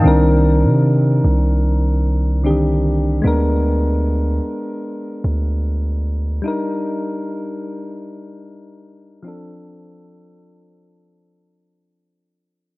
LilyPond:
<<
  \new Staff \with { instrumentName = "Synth keys" } { \time 4/4 \key d \phrygian \tempo 4 = 75 <ees c' d' bes'>2. <d ees c' d' g'>4 | <aes ces' d' bes'>1 | <g d' ees' bes'>2.~ <g d' ees' bes'>8 <f c' d' a'>8~ | <f c' d' a'>2.~ <f c' d' a'>8 r8 | }
  \new Staff \with { instrumentName = "808-style bass" } { \clef bass \time 4/4 \key d \phrygian c,8. c8. c,2~ c,8 | d,4. r4 d,4. | r1 | r1 | }
>>